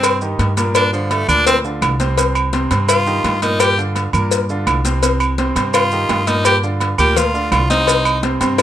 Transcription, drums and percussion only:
0.03 cowbell, high conga, low agogo, claves, maracas
0.21 high conga, maracas
0.39 cowbell, high conga, low agogo, maracas
0.57 cowbell, high conga, low agogo, maracas
0.75 cowbell, high conga, low agogo, claves, maracas
0.93 high conga, maracas
1.11 cowbell, high conga, low agogo, maracas
1.29 low conga, low agogo, claves, maracas
1.47 cowbell, high conga, maracas
1.65 high conga, maracas
1.82 cowbell, high conga, low agogo, claves, maracas
2.00 cowbell, high conga, maracas
2.18 cowbell, high conga, low agogo, maracas
2.35 high conga, low agogo, claves, maracas
2.53 cowbell, high conga, maracas
2.71 cowbell, low agogo, maracas
2.89 cowbell, high conga, low agogo, claves, maracas
3.07 high conga, maracas
3.24 cowbell, high conga, low agogo, maracas
3.42 cowbell, high conga, low agogo, maracas
3.60 cowbell, high conga, low agogo, claves, maracas
3.78 high conga, maracas
3.96 cowbell, high conga, low agogo, maracas
4.13 low conga, low agogo, claves, maracas
4.31 cowbell, high conga, maracas
4.49 high conga, maracas
4.67 cowbell, high conga, low agogo, claves, maracas
4.85 cowbell, high conga, maracas
5.03 cowbell, high conga, low agogo, maracas
5.20 high conga, low agogo, claves, maracas
5.38 cowbell, high conga, maracas
5.56 cowbell, high conga, low agogo, maracas
5.74 cowbell, high conga, low agogo, claves, maracas
5.91 high conga, maracas
6.09 cowbell, high conga, low timbale, low agogo, maracas
6.27 cowbell, high conga, low agogo, maracas
6.45 cowbell, high conga, low agogo, claves, maracas
6.63 high conga, maracas
6.80 cowbell, high conga, low agogo, maracas
6.98 low conga, low agogo, claves, maracas
7.17 cowbell, high conga, low conga, maracas
7.34 high conga, maracas
7.52 cowbell, high conga, low agogo, claves, maracas
7.70 cowbell, high conga, maracas
7.87 cowbell, low agogo, maracas
8.05 high conga, low agogo, claves, maracas
8.23 cowbell, high conga, maracas
8.41 cowbell, high conga, low agogo, maracas
8.58 cowbell, high bongo, low agogo, claves, maracas

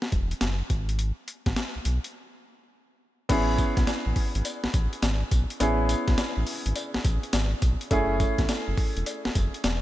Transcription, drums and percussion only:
0.02 snare
0.12 kick, closed hi-hat
0.31 closed hi-hat
0.41 snare, closed hi-hat
0.70 kick, closed hi-hat
0.89 closed hi-hat
0.99 closed hi-hat
1.28 closed hi-hat
1.46 kick, snare, closed hi-hat
1.56 snare, closed hi-hat
1.85 closed hi-hat
2.04 closed hi-hat
3.29 kick, closed hi-hat, crash, tambourine, cowbell
3.58 kick, closed hi-hat, tambourine
3.77 kick, snare, closed hi-hat
3.87 snare, closed hi-hat, tambourine, cowbell
4.16 kick, open hi-hat
4.35 closed hi-hat
4.45 closed hi-hat, tambourine, cowbell
4.64 snare
4.74 kick, closed hi-hat, tambourine
4.93 closed hi-hat
5.02 snare, closed hi-hat, tambourine, cowbell
5.31 kick, closed hi-hat, tambourine
5.50 closed hi-hat
5.60 closed hi-hat, tambourine, cowbell
5.89 closed hi-hat, tambourine
6.08 kick, snare, closed hi-hat
6.18 snare, closed hi-hat, tambourine, cowbell
6.47 open hi-hat
6.66 closed hi-hat
6.76 closed hi-hat, tambourine, cowbell
6.94 snare
7.05 kick, closed hi-hat, tambourine
7.23 closed hi-hat
7.33 snare, closed hi-hat, tambourine, cowbell
7.62 kick, closed hi-hat, tambourine
7.81 closed hi-hat
7.91 kick, closed hi-hat, tambourine, cowbell
8.20 kick, closed hi-hat, tambourine
8.38 kick, snare, closed hi-hat
8.49 snare, closed hi-hat, tambourine, cowbell
8.77 kick, open hi-hat
8.97 closed hi-hat
9.06 closed hi-hat, tambourine, cowbell
9.25 snare
9.35 kick, closed hi-hat, tambourine
9.54 closed hi-hat
9.64 snare, closed hi-hat, tambourine, cowbell

